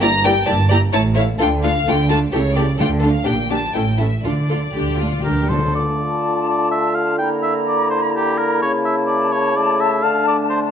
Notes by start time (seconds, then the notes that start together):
0.01 G1 G2 A#3 E4 G4 D5 A#5
0.24 A#3 E4 G4 D5 G5
0.45 G1 G2 A#3 E4 G4 D5 A5
0.69 A#3 E4 G4 D5 A#5
0.93 A1 A2 A3 E4 C#5 A5
1.15 A3 E4 C#5 F5
1.39 D2 D3 A3 D4 F4 A4 G5
1.63 A3 D4 F4 A4 F5
1.86 D2 D3 A3 D4 F4 A4 G5
2.09 A3 D4 F4 A4 A5
2.32 C#2 C#3 A3 E4 G4 A4 C#5
2.54 A3 E4 G4 A4 D5
2.78 D2 D3 A3 D4 F4 A4 G5
3.01 A3 D4 F4 A4 F5
3.24 A#1 A#2 A#3 D4 G4 G5
3.50 A#3 D4 G4 A5
3.74 A1 A2 A3 C#4 E4 A4 G5
3.97 A3 C#4 E4 A4 E5
4.24 D2 D3 A3 D4 F4 A4 D5
4.33 D3
4.41 D3
4.48 D3 A3 D4 F4 A4
4.56 D3
4.65 D3
4.73 D2 D3 A3 D4 G4
4.81 D3
4.89 D3
4.97 D3 F4
5.02 D3 A3 D4
5.12 D3
5.19 D3
5.24 D2 D3 A3 D4 G4 A#4
5.35 D3
5.42 D3
5.49 D3 A3 D4 A4 C5
5.58 D3
5.66 D3
5.74 D3 A3 F4 D5 A5
6.49 D5
6.72 E5
6.95 F5
7.18 A#3 E4 G5 A#5
7.43 E5
7.68 D5
7.90 C5
8.16 G4
8.38 A#4
8.62 C#3 C#5 A5
8.85 E5
9.07 D5
9.32 C#5
9.56 A3 D5
9.81 E5
10.02 D3 D4 F5
10.28 D5
10.50 C5